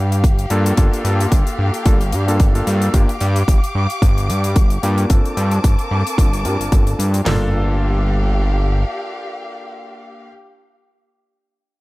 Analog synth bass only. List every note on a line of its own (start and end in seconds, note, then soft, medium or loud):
0.00 0.25 G2 medium
0.24 0.46 G1 medium
0.50 0.73 G2 medium
0.78 0.90 G1 medium
1.04 1.27 G2 loud
1.32 1.44 G1 medium
1.59 1.71 G2 medium
1.86 2.14 G1 loud
2.13 2.41 G2 medium
2.40 2.62 G1 medium
2.67 2.89 G2 loud
2.94 3.06 G1 medium
3.21 3.43 G2 loud
3.48 3.60 G1 medium
3.75 3.87 G2 medium
4.02 4.30 G1 medium
4.29 4.58 G2 medium
4.56 4.78 G1 medium
4.83 5.05 G2 medium
5.10 5.22 G1 medium
5.37 5.59 G2 medium
5.64 5.76 G1 medium
5.91 6.03 G2 medium
6.18 6.46 G1 medium
6.45 6.57 G2 medium
6.60 6.70 G1 soft
6.72 6.94 G1 medium
6.99 7.21 G2 medium
7.26 8.84 G1 medium